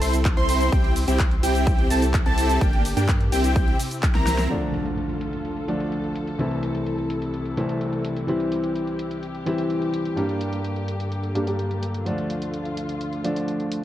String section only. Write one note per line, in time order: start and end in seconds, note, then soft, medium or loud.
0.00 0.71 C3 medium
0.00 2.58 C4 medium
0.00 2.58 E4 medium
0.00 0.69 A4 medium
0.72 2.60 C3 medium
0.72 4.47 G4 medium
2.61 3.55 A#3 medium
2.61 3.55 D4 medium
3.56 4.49 C3 medium
3.56 4.49 C4 medium
3.56 4.49 E4 medium
4.50 6.38 D2 medium
4.50 6.38 D3 medium
4.50 6.38 F4 medium
4.50 8.25 A4 medium
6.39 10.14 C2 medium
6.39 10.13 C3 medium
6.39 10.14 E4 medium
8.28 12.02 G4 medium
10.17 12.04 G2 medium
10.17 13.84 D3 medium
10.17 12.04 A#3 medium
12.06 13.84 D2 medium
12.06 13.84 A3 medium
12.06 13.84 F4 medium